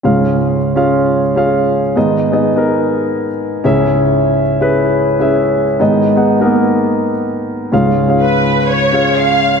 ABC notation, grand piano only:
X:1
M:4/4
L:1/16
Q:1/4=125
K:C#dor
V:1 name="Grand piano"
[C^EG^e]4 z2 [CEGe]4 z [CEGe]4 z | [B,DGd]2 z [B,DGd] z [B,DGA]6 z3 [CEGe]2- | [CEGe]4 z2 [CEGB]4 z [CEGe]4 z | [B,DGd]2 z [B,DGf] z [A,B,DGA]6 z4 z |
[C^EG^e]2 z [CEGe]4- [CEGe] z2 [CEGe]4 z2 |]
V:2 name="Grand piano" clef=bass
[C,,G,,]16 | [G,,D,]12- [G,,D,]2 [C,,G,,]2- | [C,,G,,]12- [C,,G,,]2 z2 | [G,,D,]16 |
[C,,G,,]16 |]